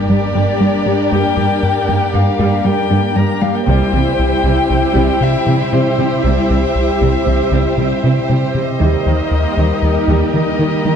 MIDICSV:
0, 0, Header, 1, 8, 480
1, 0, Start_track
1, 0, Tempo, 512821
1, 1044, Time_signature, 5, 2, 24, 8
1, 10257, End_track
2, 0, Start_track
2, 0, Title_t, "Violin"
2, 0, Program_c, 0, 40
2, 91, Note_on_c, 0, 74, 70
2, 1028, Note_off_c, 0, 74, 0
2, 1040, Note_on_c, 0, 79, 74
2, 2004, Note_on_c, 0, 77, 66
2, 2018, Note_off_c, 0, 79, 0
2, 2481, Note_on_c, 0, 79, 78
2, 2495, Note_off_c, 0, 77, 0
2, 2957, Note_on_c, 0, 82, 78
2, 2971, Note_off_c, 0, 79, 0
2, 3195, Note_on_c, 0, 77, 70
2, 3209, Note_off_c, 0, 82, 0
2, 3325, Note_on_c, 0, 79, 59
2, 3339, Note_off_c, 0, 77, 0
2, 3426, Note_off_c, 0, 79, 0
2, 3432, Note_on_c, 0, 79, 88
2, 4891, Note_on_c, 0, 76, 74
2, 4905, Note_off_c, 0, 79, 0
2, 5366, Note_on_c, 0, 72, 64
2, 5380, Note_off_c, 0, 76, 0
2, 5834, Note_off_c, 0, 72, 0
2, 5840, Note_on_c, 0, 76, 68
2, 7724, Note_off_c, 0, 76, 0
2, 8004, Note_on_c, 0, 75, 57
2, 9646, Note_off_c, 0, 75, 0
2, 9694, Note_on_c, 0, 75, 59
2, 10257, Note_off_c, 0, 75, 0
2, 10257, End_track
3, 0, Start_track
3, 0, Title_t, "Violin section"
3, 0, Program_c, 1, 48
3, 0, Note_on_c, 1, 67, 46
3, 0, Note_on_c, 1, 70, 47
3, 3410, Note_off_c, 1, 67, 0
3, 3410, Note_off_c, 1, 70, 0
3, 3440, Note_on_c, 1, 67, 55
3, 3441, Note_on_c, 1, 72, 53
3, 8017, Note_off_c, 1, 67, 0
3, 8258, Note_on_c, 1, 67, 44
3, 9165, Note_off_c, 1, 72, 0
3, 9211, Note_on_c, 1, 70, 43
3, 10257, Note_off_c, 1, 67, 0
3, 10257, Note_off_c, 1, 70, 0
3, 10257, End_track
4, 0, Start_track
4, 0, Title_t, "Analog synth pad"
4, 0, Program_c, 2, 89
4, 0, Note_on_c, 2, 55, 59
4, 0, Note_on_c, 2, 58, 53
4, 0, Note_on_c, 2, 67, 58
4, 0, Note_on_c, 2, 74, 53
4, 3409, Note_off_c, 2, 55, 0
4, 3409, Note_off_c, 2, 58, 0
4, 3409, Note_off_c, 2, 74, 0
4, 3410, Note_off_c, 2, 67, 0
4, 3447, Note_on_c, 2, 76, 62
4, 3449, Note_on_c, 2, 60, 55
4, 3449, Note_on_c, 2, 67, 60
4, 3453, Note_on_c, 2, 55, 58
4, 8209, Note_off_c, 2, 67, 0
4, 8211, Note_off_c, 2, 55, 0
4, 8246, Note_off_c, 2, 60, 0
4, 8246, Note_off_c, 2, 76, 0
4, 8249, Note_on_c, 2, 75, 52
4, 8250, Note_on_c, 2, 70, 54
4, 8251, Note_on_c, 2, 55, 53
4, 8251, Note_on_c, 2, 58, 53
4, 10257, Note_off_c, 2, 55, 0
4, 10257, Note_off_c, 2, 58, 0
4, 10257, Note_off_c, 2, 70, 0
4, 10257, Note_off_c, 2, 75, 0
4, 10257, End_track
5, 0, Start_track
5, 0, Title_t, "Viola section"
5, 0, Program_c, 3, 48
5, 0, Note_on_c, 3, 62, 45
5, 82, Note_on_c, 3, 55, 37
5, 156, Note_off_c, 3, 55, 0
5, 318, Note_on_c, 3, 50, 44
5, 393, Note_off_c, 3, 50, 0
5, 556, Note_on_c, 3, 55, 45
5, 630, Note_off_c, 3, 55, 0
5, 802, Note_on_c, 3, 55, 40
5, 877, Note_off_c, 3, 55, 0
5, 1038, Note_on_c, 3, 55, 54
5, 1264, Note_off_c, 3, 55, 0
5, 1279, Note_on_c, 3, 55, 39
5, 1354, Note_off_c, 3, 55, 0
5, 1759, Note_on_c, 3, 55, 37
5, 1833, Note_off_c, 3, 55, 0
5, 2002, Note_on_c, 3, 55, 41
5, 2077, Note_off_c, 3, 55, 0
5, 2236, Note_on_c, 3, 55, 59
5, 2463, Note_off_c, 3, 55, 0
5, 2482, Note_on_c, 3, 55, 47
5, 2557, Note_off_c, 3, 55, 0
5, 2718, Note_on_c, 3, 50, 47
5, 2793, Note_off_c, 3, 50, 0
5, 2965, Note_on_c, 3, 55, 50
5, 3040, Note_off_c, 3, 55, 0
5, 3195, Note_on_c, 3, 55, 41
5, 3270, Note_off_c, 3, 55, 0
5, 3403, Note_off_c, 3, 62, 0
5, 3433, Note_on_c, 3, 64, 51
5, 3436, Note_on_c, 3, 55, 58
5, 3663, Note_off_c, 3, 55, 0
5, 3682, Note_on_c, 3, 55, 41
5, 3757, Note_off_c, 3, 55, 0
5, 4162, Note_on_c, 3, 55, 45
5, 4237, Note_off_c, 3, 55, 0
5, 4396, Note_on_c, 3, 55, 45
5, 4471, Note_off_c, 3, 55, 0
5, 4634, Note_on_c, 3, 55, 62
5, 4862, Note_off_c, 3, 55, 0
5, 4877, Note_on_c, 3, 55, 44
5, 4952, Note_off_c, 3, 55, 0
5, 5114, Note_on_c, 3, 52, 45
5, 5189, Note_off_c, 3, 52, 0
5, 5358, Note_on_c, 3, 55, 38
5, 5433, Note_off_c, 3, 55, 0
5, 5600, Note_on_c, 3, 55, 38
5, 5675, Note_off_c, 3, 55, 0
5, 5843, Note_on_c, 3, 55, 49
5, 6066, Note_off_c, 3, 55, 0
5, 6080, Note_on_c, 3, 55, 32
5, 6155, Note_off_c, 3, 55, 0
5, 6557, Note_on_c, 3, 55, 35
5, 6632, Note_off_c, 3, 55, 0
5, 6794, Note_on_c, 3, 55, 33
5, 6868, Note_off_c, 3, 55, 0
5, 7044, Note_on_c, 3, 55, 47
5, 7267, Note_off_c, 3, 55, 0
5, 7278, Note_on_c, 3, 55, 41
5, 7353, Note_off_c, 3, 55, 0
5, 7525, Note_on_c, 3, 52, 36
5, 7600, Note_off_c, 3, 52, 0
5, 7757, Note_on_c, 3, 55, 36
5, 7831, Note_off_c, 3, 55, 0
5, 8004, Note_on_c, 3, 55, 34
5, 8051, Note_off_c, 3, 64, 0
5, 8079, Note_off_c, 3, 55, 0
5, 8238, Note_on_c, 3, 63, 42
5, 8239, Note_on_c, 3, 55, 44
5, 8464, Note_off_c, 3, 55, 0
5, 8479, Note_on_c, 3, 55, 31
5, 8554, Note_off_c, 3, 55, 0
5, 8958, Note_on_c, 3, 55, 35
5, 9033, Note_off_c, 3, 55, 0
5, 9196, Note_on_c, 3, 55, 34
5, 9271, Note_off_c, 3, 55, 0
5, 9436, Note_on_c, 3, 55, 51
5, 9663, Note_off_c, 3, 55, 0
5, 9681, Note_on_c, 3, 55, 39
5, 9756, Note_off_c, 3, 55, 0
5, 9911, Note_on_c, 3, 51, 41
5, 9986, Note_off_c, 3, 51, 0
5, 10155, Note_on_c, 3, 55, 41
5, 10230, Note_off_c, 3, 55, 0
5, 10257, Note_off_c, 3, 63, 0
5, 10257, End_track
6, 0, Start_track
6, 0, Title_t, "Cello section"
6, 0, Program_c, 4, 48
6, 79, Note_on_c, 4, 43, 37
6, 154, Note_off_c, 4, 43, 0
6, 321, Note_on_c, 4, 43, 37
6, 396, Note_off_c, 4, 43, 0
6, 564, Note_on_c, 4, 43, 36
6, 639, Note_off_c, 4, 43, 0
6, 801, Note_on_c, 4, 43, 44
6, 876, Note_off_c, 4, 43, 0
6, 1042, Note_on_c, 4, 43, 57
6, 1117, Note_off_c, 4, 43, 0
6, 1278, Note_on_c, 4, 43, 45
6, 1353, Note_off_c, 4, 43, 0
6, 1760, Note_on_c, 4, 43, 42
6, 1835, Note_off_c, 4, 43, 0
6, 1996, Note_on_c, 4, 43, 44
6, 2071, Note_off_c, 4, 43, 0
6, 2238, Note_on_c, 4, 43, 58
6, 2313, Note_off_c, 4, 43, 0
6, 2480, Note_on_c, 4, 43, 44
6, 2555, Note_off_c, 4, 43, 0
6, 2715, Note_on_c, 4, 43, 45
6, 2790, Note_off_c, 4, 43, 0
6, 2958, Note_on_c, 4, 43, 44
6, 3033, Note_off_c, 4, 43, 0
6, 3199, Note_on_c, 4, 43, 49
6, 3274, Note_off_c, 4, 43, 0
6, 3442, Note_on_c, 4, 48, 63
6, 3517, Note_off_c, 4, 48, 0
6, 3686, Note_on_c, 4, 48, 51
6, 3761, Note_off_c, 4, 48, 0
6, 4166, Note_on_c, 4, 48, 43
6, 4241, Note_off_c, 4, 48, 0
6, 4403, Note_on_c, 4, 48, 43
6, 4478, Note_off_c, 4, 48, 0
6, 4642, Note_on_c, 4, 48, 64
6, 4717, Note_off_c, 4, 48, 0
6, 4886, Note_on_c, 4, 48, 43
6, 4961, Note_off_c, 4, 48, 0
6, 5130, Note_on_c, 4, 48, 43
6, 5205, Note_off_c, 4, 48, 0
6, 5367, Note_on_c, 4, 48, 36
6, 5442, Note_off_c, 4, 48, 0
6, 5605, Note_on_c, 4, 48, 39
6, 5680, Note_off_c, 4, 48, 0
6, 5846, Note_on_c, 4, 48, 52
6, 5921, Note_off_c, 4, 48, 0
6, 6084, Note_on_c, 4, 48, 38
6, 6159, Note_off_c, 4, 48, 0
6, 6569, Note_on_c, 4, 48, 35
6, 6644, Note_off_c, 4, 48, 0
6, 6802, Note_on_c, 4, 48, 35
6, 6877, Note_off_c, 4, 48, 0
6, 7037, Note_on_c, 4, 48, 49
6, 7112, Note_off_c, 4, 48, 0
6, 7282, Note_on_c, 4, 48, 31
6, 7357, Note_off_c, 4, 48, 0
6, 7524, Note_on_c, 4, 48, 37
6, 7599, Note_off_c, 4, 48, 0
6, 7767, Note_on_c, 4, 48, 36
6, 7842, Note_off_c, 4, 48, 0
6, 8000, Note_on_c, 4, 48, 35
6, 8075, Note_off_c, 4, 48, 0
6, 8234, Note_on_c, 4, 51, 49
6, 8308, Note_off_c, 4, 51, 0
6, 8479, Note_on_c, 4, 51, 38
6, 8554, Note_off_c, 4, 51, 0
6, 8959, Note_on_c, 4, 51, 37
6, 9034, Note_off_c, 4, 51, 0
6, 9201, Note_on_c, 4, 51, 38
6, 9276, Note_off_c, 4, 51, 0
6, 9442, Note_on_c, 4, 51, 51
6, 9516, Note_off_c, 4, 51, 0
6, 9687, Note_on_c, 4, 51, 37
6, 9762, Note_off_c, 4, 51, 0
6, 9923, Note_on_c, 4, 51, 39
6, 9998, Note_off_c, 4, 51, 0
6, 10156, Note_on_c, 4, 51, 38
6, 10231, Note_off_c, 4, 51, 0
6, 10257, End_track
7, 0, Start_track
7, 0, Title_t, "Analog synth bass"
7, 0, Program_c, 5, 38
7, 91, Note_on_c, 5, 55, 46
7, 233, Note_off_c, 5, 55, 0
7, 333, Note_on_c, 5, 55, 51
7, 474, Note_off_c, 5, 55, 0
7, 568, Note_on_c, 5, 55, 53
7, 711, Note_off_c, 5, 55, 0
7, 807, Note_on_c, 5, 55, 51
7, 950, Note_off_c, 5, 55, 0
7, 1050, Note_on_c, 5, 43, 70
7, 1192, Note_off_c, 5, 43, 0
7, 1282, Note_on_c, 5, 43, 57
7, 1427, Note_off_c, 5, 43, 0
7, 1525, Note_on_c, 5, 43, 57
7, 1668, Note_off_c, 5, 43, 0
7, 1766, Note_on_c, 5, 43, 51
7, 1910, Note_off_c, 5, 43, 0
7, 2010, Note_on_c, 5, 43, 51
7, 2152, Note_off_c, 5, 43, 0
7, 2242, Note_on_c, 5, 43, 69
7, 2386, Note_off_c, 5, 43, 0
7, 2478, Note_on_c, 5, 55, 46
7, 2624, Note_off_c, 5, 55, 0
7, 2719, Note_on_c, 5, 55, 57
7, 2865, Note_off_c, 5, 55, 0
7, 2957, Note_on_c, 5, 55, 51
7, 3103, Note_off_c, 5, 55, 0
7, 3200, Note_on_c, 5, 55, 52
7, 3345, Note_off_c, 5, 55, 0
7, 3440, Note_on_c, 5, 36, 80
7, 3585, Note_off_c, 5, 36, 0
7, 3675, Note_on_c, 5, 36, 53
7, 3821, Note_off_c, 5, 36, 0
7, 3922, Note_on_c, 5, 36, 56
7, 4066, Note_off_c, 5, 36, 0
7, 4152, Note_on_c, 5, 36, 50
7, 4300, Note_off_c, 5, 36, 0
7, 4400, Note_on_c, 5, 36, 53
7, 4545, Note_off_c, 5, 36, 0
7, 4633, Note_on_c, 5, 36, 75
7, 4780, Note_off_c, 5, 36, 0
7, 4875, Note_on_c, 5, 48, 46
7, 5022, Note_off_c, 5, 48, 0
7, 5116, Note_on_c, 5, 48, 55
7, 5263, Note_off_c, 5, 48, 0
7, 5360, Note_on_c, 5, 48, 53
7, 5505, Note_off_c, 5, 48, 0
7, 5602, Note_on_c, 5, 48, 52
7, 5747, Note_off_c, 5, 48, 0
7, 5840, Note_on_c, 5, 36, 71
7, 5985, Note_off_c, 5, 36, 0
7, 6085, Note_on_c, 5, 36, 55
7, 6229, Note_off_c, 5, 36, 0
7, 6319, Note_on_c, 5, 36, 53
7, 6464, Note_off_c, 5, 36, 0
7, 6563, Note_on_c, 5, 36, 51
7, 6707, Note_off_c, 5, 36, 0
7, 6801, Note_on_c, 5, 36, 48
7, 6946, Note_off_c, 5, 36, 0
7, 7033, Note_on_c, 5, 36, 66
7, 7180, Note_off_c, 5, 36, 0
7, 7279, Note_on_c, 5, 48, 43
7, 7425, Note_off_c, 5, 48, 0
7, 7523, Note_on_c, 5, 48, 51
7, 7668, Note_off_c, 5, 48, 0
7, 7765, Note_on_c, 5, 48, 52
7, 7908, Note_off_c, 5, 48, 0
7, 8000, Note_on_c, 5, 48, 52
7, 8145, Note_off_c, 5, 48, 0
7, 8243, Note_on_c, 5, 39, 68
7, 8387, Note_off_c, 5, 39, 0
7, 8483, Note_on_c, 5, 39, 54
7, 8627, Note_off_c, 5, 39, 0
7, 8715, Note_on_c, 5, 39, 54
7, 8862, Note_off_c, 5, 39, 0
7, 8959, Note_on_c, 5, 39, 49
7, 9104, Note_off_c, 5, 39, 0
7, 9196, Note_on_c, 5, 39, 50
7, 9342, Note_off_c, 5, 39, 0
7, 9431, Note_on_c, 5, 39, 67
7, 9579, Note_off_c, 5, 39, 0
7, 9675, Note_on_c, 5, 51, 44
7, 9822, Note_off_c, 5, 51, 0
7, 9914, Note_on_c, 5, 51, 51
7, 10061, Note_off_c, 5, 51, 0
7, 10157, Note_on_c, 5, 51, 48
7, 10257, Note_off_c, 5, 51, 0
7, 10257, End_track
8, 0, Start_track
8, 0, Title_t, "Impact"
8, 0, Program_c, 6, 103
8, 0, Note_on_c, 6, 60, 44
8, 1045, Note_off_c, 6, 60, 0
8, 10257, End_track
0, 0, End_of_file